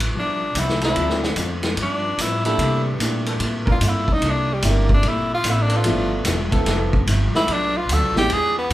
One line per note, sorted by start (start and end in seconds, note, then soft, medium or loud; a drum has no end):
0.00 0.13 A1 medium
0.00 0.47 F3 medium
0.00 0.47 A3 soft
0.00 0.47 B3 soft
0.00 0.47 D4 soft
0.00 0.47 E4 medium
0.00 ride medium
0.14 0.53 B1 medium
0.14 0.43 G2 soft
0.14 0.43 F3 soft
0.14 0.44 B3 soft
0.14 0.44 E4 medium
0.19 0.61 D4 medium
0.54 0.94 C2 medium
0.54 0.83 G2 medium
0.54 0.84 F3 medium
0.54 0.84 B3 medium
0.54 0.84 E4 medium
0.54 hi-hat pedal medium
0.54 ride medium
0.60 0.84 E4 medium
0.69 snare soft
0.81 1.34 F3 loud
0.81 1.34 C4 medium
0.81 1.34 D4 medium
0.81 1.21 E4 loud
0.81 1.34 A4 loud
0.81 snare soft
0.81 ride soft
0.96 1.35 D2 medium
0.96 1.24 D3 soft
0.96 1.20 F3 medium
0.96 1.24 A3 medium
0.96 1.21 A3 medium
0.96 1.21 C4 soft
0.96 1.25 C4 medium
0.96 1.21 D4 medium
0.96 1.21 E4 medium
0.96 1.25 F4 medium
0.96 ride medium
1.10 snare soft
1.23 snare medium
1.36 1.76 F2 medium
1.36 1.65 D3 medium
1.36 1.65 A3 medium
1.36 1.66 C4 medium
1.36 1.66 F4 medium
1.36 hi-hat pedal medium
1.36 ride medium
1.63 snare soft
1.63 ride soft
1.76 2.16 G2 medium
1.76 2.05 G2 soft
1.76 2.06 F3 medium
1.76 2.06 B3 soft
1.76 2.07 E4 medium
1.76 ride medium
1.83 2.23 D4 medium
2.18 2.46 G2 medium
2.18 2.58 A2 medium
2.18 2.47 F3 medium
2.18 2.47 B3 medium
2.18 2.47 E4 medium
2.18 2.45 E4 medium
2.18 hi-hat pedal medium
2.18 ride medium
2.45 2.97 E3 medium
2.45 2.97 G3 medium
2.45 2.97 A3 medium
2.45 2.97 A#3 medium
2.45 2.97 D4 medium
2.45 2.83 E4 medium
2.45 2.98 G4 medium
2.45 2.97 A4 loud
2.45 ride soft
2.58 2.98 C3 medium
2.58 2.87 C3 medium
2.58 2.88 A#3 soft
2.58 2.88 E4 medium
2.58 2.88 A4 medium
2.58 ride medium
2.99 3.39 A#2 medium
2.99 3.28 C3 medium
2.99 3.62 G3 medium
2.99 3.62 A3 medium
2.99 3.28 A#3 medium
2.99 3.62 A#3 medium
2.99 3.63 D4 medium
2.99 3.28 E4 medium
2.99 3.63 E4 medium
2.99 3.29 A4 medium
2.99 hi-hat pedal medium
2.99 ride medium
3.26 3.36 E3 medium
3.26 3.36 A#3 medium
3.26 3.36 D4 medium
3.26 3.36 A4 medium
3.26 ride soft
3.40 3.80 A2 medium
3.40 3.68 C3 medium
3.40 3.69 A#3 medium
3.40 3.69 E4 medium
3.40 3.70 A4 medium
3.40 ride medium
3.66 3.77 E3 medium
3.66 3.77 A#3 medium
3.66 3.76 D4 medium
3.66 3.76 A#4 loud
3.66 kick medium
3.71 3.90 F4 medium
3.80 4.20 G2 medium
3.80 4.09 C3 medium
3.80 4.10 A#3 medium
3.80 4.10 E4 medium
3.80 4.10 A4 medium
3.80 hi-hat pedal medium
3.80 ride medium
3.88 4.15 E4 medium
4.08 kick medium
4.13 4.31 D#4 loud
4.21 4.61 C2 medium
4.21 4.50 C3 soft
4.21 4.51 A#3 medium
4.21 4.51 E4 medium
4.21 ride medium
4.25 4.52 A4 medium
4.30 4.55 D4 medium
4.54 4.71 G3 medium
4.62 5.02 G1 medium
4.62 4.91 C3 medium
4.62 5.25 G3 medium
4.62 5.25 A3 medium
4.62 5.25 A#3 medium
4.62 4.92 A#3 medium
4.62 5.26 D4 medium
4.62 4.92 E4 medium
4.62 5.26 E4 medium
4.62 4.92 A4 medium
4.62 hi-hat pedal medium
4.62 ride medium
4.70 4.93 A#3 medium
4.89 kick medium
4.94 5.10 D4 medium
5.03 5.43 A#1 medium
5.03 5.32 C3 soft
5.03 5.33 A#3 soft
5.03 5.33 E4 medium
5.03 ride medium
5.08 5.33 E4 medium
5.08 5.33 A4 medium
5.34 5.52 F4 loud
5.44 5.84 A1 medium
5.44 5.73 C3 medium
5.44 5.73 A#3 medium
5.44 5.73 E4 medium
5.44 5.74 A4 medium
5.44 hi-hat pedal medium
5.44 ride medium
5.51 5.64 E4 medium
5.63 5.78 D4 medium
5.68 6.22 F3 loud
5.68 6.22 B3 medium
5.68 6.22 D4 medium
5.68 6.22 A4 loud
5.68 ride soft
5.76 6.15 F4 medium
5.84 6.24 G1 medium
5.84 6.13 G2 medium
5.84 6.99 F3 medium
5.84 6.14 F3 medium
5.84 6.99 A3 medium
5.84 6.99 B3 medium
5.84 7.00 D4 medium
5.84 7.00 E4 medium
5.84 ride medium
5.88 6.14 B3 medium
5.88 6.15 E4 medium
6.25 6.65 E1 medium
6.25 6.54 G2 medium
6.25 6.54 F3 medium
6.25 6.55 B3 medium
6.25 6.55 E4 medium
6.25 snare soft
6.25 hi-hat pedal medium
6.25 ride medium
6.51 7.04 F3 medium
6.51 7.04 B3 loud
6.51 7.04 E4 loud
6.51 7.04 A4 loud
6.51 kick medium
6.51 ride soft
6.66 7.06 F1 medium
6.66 6.94 G2 medium
6.66 6.95 F3 medium
6.66 6.95 B3 medium
6.66 6.96 E4 medium
6.66 snare soft
6.66 ride medium
6.93 kick medium
7.07 7.32 G1 loud
7.07 7.36 G2 medium
7.07 7.36 F3 medium
7.07 7.37 B3 medium
7.07 7.37 E4 medium
7.07 hi-hat pedal medium
7.07 ride medium
7.34 7.54 E4 loud
7.34 muted upright bass stroke soft
7.34 snare soft
7.48 7.88 B1 medium
7.48 7.76 B2 medium
7.48 7.77 F#3 medium
7.48 7.77 A3 medium
7.48 7.78 D4 medium
7.48 ride medium
7.53 7.79 D4 medium
7.77 7.95 F4 loud
7.89 8.03 D2 medium
7.89 8.18 B2 medium
7.89 8.18 F#3 medium
7.89 8.18 A3 medium
7.89 8.19 D4 medium
7.89 hi-hat pedal medium
7.89 ride medium
7.93 8.17 A4 loud
8.03 8.15 B1 medium
8.15 8.28 A1 medium
8.15 8.28 E3 medium
8.15 8.29 G#3 medium
8.15 8.29 B3 medium
8.15 8.29 D4 medium
8.15 8.29 E4 medium
8.15 8.34 G4 loud
8.15 snare soft
8.30 8.70 E2 medium
8.30 8.58 E3 soft
8.30 8.58 B3 medium
8.30 8.59 D4 medium
8.30 8.59 G#4 medium
8.30 8.58 G#4 loud
8.30 ride medium
8.58 8.73 B3 medium
8.70 8.73 G#2 medium